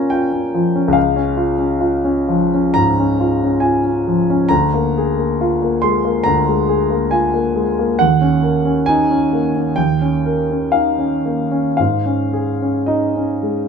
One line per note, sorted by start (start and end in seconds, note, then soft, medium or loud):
0.00 0.54 F3 soft
0.00 0.98 A#3 soft
0.00 0.33 C#4 soft
0.00 0.12 F4 soft
0.00 0.98 G#5 medium
0.00 0.11 A#5 medium
0.10 0.46 F4 soft
0.10 0.95 G5 medium
0.33 0.66 C#4 soft
0.54 0.88 F3 soft
0.76 0.96 C#4 soft
0.88 2.69 C#2 medium
0.93 2.76 F5 medium
1.16 1.51 C#4 soft
1.37 1.73 F4 soft
1.58 1.95 C#4 soft
1.81 2.19 F4 soft
2.05 2.44 C#4 soft
2.28 2.67 F3 soft
2.54 2.91 C#4 soft
2.74 3.12 G#2 soft
2.74 3.62 A#5 medium
3.00 3.34 C#4 soft
3.20 3.55 F4 soft
3.44 3.77 C#4 soft
3.60 3.98 F4 soft
3.60 4.49 G#5 medium
3.84 4.19 C#4 soft
4.07 4.42 F3 soft
4.30 4.51 C#4 soft
4.49 6.21 D2 medium
4.49 5.82 A#5 medium
4.74 5.09 A#3 soft
4.98 5.32 G#4 soft
5.18 5.53 A#3 soft
5.41 5.75 F4 medium
5.62 5.96 A#3 soft
5.82 6.17 G#3 soft
5.82 6.25 C6 medium
6.05 6.39 A#3 soft
6.24 7.94 D2 soft
6.24 7.09 A#5 medium
6.49 6.81 G#3 soft
6.69 7.02 G#4 soft
6.90 7.24 A#3 soft
7.11 7.46 F4 soft
7.11 7.54 G#5 medium
7.34 7.68 A#3 soft
7.56 7.90 G#3 soft
7.79 8.00 A#3 medium
7.99 9.74 D#2 medium
7.99 8.87 F#5 medium
8.21 8.56 C#4 soft
8.43 8.78 A#4 soft
8.65 9.00 C#4 soft
8.86 9.23 D#4 soft
8.86 9.76 G#5 medium
9.11 9.46 C#4 soft
9.33 9.68 A#3 soft
9.55 9.77 C#4 soft
9.76 11.74 D#2 medium
9.76 10.72 G5 medium
10.02 10.39 C#4 soft
10.26 10.64 A#4 soft
10.51 10.89 C#4 soft
10.72 11.14 D#4 soft
10.72 11.75 F5 medium
10.99 11.40 C#4 soft
11.26 11.68 A#3 soft
11.51 11.78 C#4 soft
11.77 13.68 G#2 soft
11.77 12.88 F5 medium
12.06 12.50 C#4 soft
12.33 12.77 G#4 soft
12.62 13.06 C#4 soft
12.86 13.32 D#4 soft
12.86 13.68 D#5 soft
13.16 13.59 C#4 soft
13.43 13.68 G#3 soft